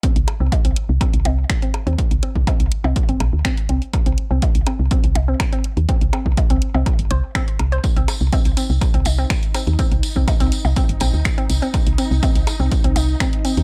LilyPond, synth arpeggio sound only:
\new Staff \with { instrumentName = "Synth arpeggio sound" } { \time 4/4 \key c \minor \tempo 4 = 123 c'16 r8 c'16 r16 c'16 r8 c'16 r16 c'16 r8 c'16 r16 c'16 | r8 c'16 r16 c'16 r8 c'16 r16 c'16 r8 c'16 r16 c'16 r16 | r16 c'16 r16 c'16 r8 c'16 r16 c'16 r8 c'16 r16 c'16 r8 | c'16 r16 c'16 r8 c'16 r16 c'16 r8 c''16 r16 c'16 r8 c''16 |
r16 c'16 r8 c'16 r16 c'16 r8 c'16 r16 c'16 r8 c'16 r16 | c'16 r8 c'16 r16 c'16 r8 c'16 r16 c'16 r8 c'16 r16 c'16 | r8 c'16 r16 c'16 r8 c'16 r16 c'16 r8 c'16 r16 c'16 r16 | }